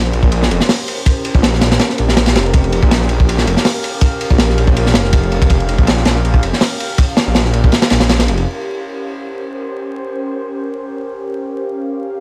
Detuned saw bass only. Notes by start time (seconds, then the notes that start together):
Already playing: A#1
0.14 A#1
0.32 A#1
0.51 F1
1.34 A#1
1.62 A#1
1.99 A#1
2.36 F1
2.83 A#1
3.10 A#1
3.28 A#1
3.47 F1
4.31 A#1
4.58 A#1
4.95 F1
5.32 F1
5.78 A#1
6.06 A#1
6.24 A#1
6.43 F1
7.27 A#1
7.54 A#1
7.91 A#1
8.28 F1